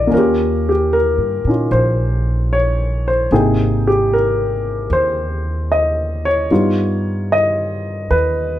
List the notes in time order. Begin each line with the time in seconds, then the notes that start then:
Already playing: D3 C4 F4 G4 C5 D5 D#5
0.07 A#3 C#4
0.12 D#2 F4 A#4
0.18 G4
0.69 G4
0.93 A#4
1.18 G2
1.44 A#2 C#4
1.49 D#4 F4
1.71 A#1 C5
2.53 C#5
3.08 C5
3.31 G#1 C3 A#3 D#4 G#4 G5
3.87 G4
4.13 A#4
4.90 D#2 C5
5.72 D#5
6.25 C#5
6.50 G2 G3 B3 D#4 F4
7.32 D#5
8.10 D#2 B4